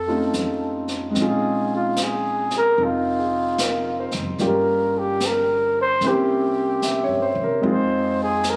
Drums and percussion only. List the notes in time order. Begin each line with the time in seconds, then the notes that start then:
0.33 snare, hi-hat pedal
0.88 snare
1.15 brush sweep, snare
1.96 snare, hi-hat pedal
2.50 snare
2.77 brush sweep
3.58 snare, hi-hat pedal
4.11 snare
4.38 brush sweep, snare
5.20 snare, hi-hat pedal
6.01 brush sweep, snare
6.82 snare, hi-hat pedal
7.63 brush sweep
8.43 snare, hi-hat pedal